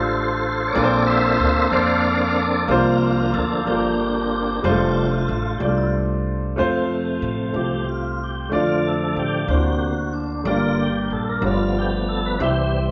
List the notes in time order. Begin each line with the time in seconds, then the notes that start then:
Already playing: A1 D3 A3 D4 F4 G4 A4 C5
0.67 C#5
0.72 A#1 A#2 A#3 C4 D4 F4 A4 D5
0.78 B4
0.84 C5
1.07 A4 C5 E5
1.39 D2
1.71 F2 A#3 D4 A4 C5 D5 F5
2.68 C2 C3 F3 A#3 D4 F4 C5
3.33 D2 A4
3.65 G1 F3 A#3 D4 F4 G4 A4
3.75 A#4
4.62 F1 G3 A3 D4 F4 C5
4.69 A3
5.29 A1
5.58 C2 G3 D4 F4 G4 D5
5.65 A3 F4
5.77 E4
5.86 F4
6.56 F2 C3 F3 A3 C4 F4 C5
7.22 A2
7.53 C2 C3 A3 C4 F4 G4
7.57 F3 A3 G4
7.89 F4
8.24 G4
8.49 F2 D3 F3 A3 D4 F4 D5
8.55 A3 F4
8.87 A4
9.16 A2 G4
9.48 D2 C3 D3 A#3 D4 E4 F#4 C5
9.56 F#4
9.82 F#4
10.13 D4
10.44 G1 G2 D3 G3 A3 A#3 D4 F4 G4 D5
10.50 A#3
10.80 G4
11.10 A#1 A4
11.29 A#4
11.41 G1 G2 B3 F4 G4 C#5
11.47 F3 A3 B3 F4
11.51 D5
11.79 G4
12.09 A4
12.26 B4
12.39 C2 C3 E3 C4 E4 G4 E5
12.43 G3 C4 G4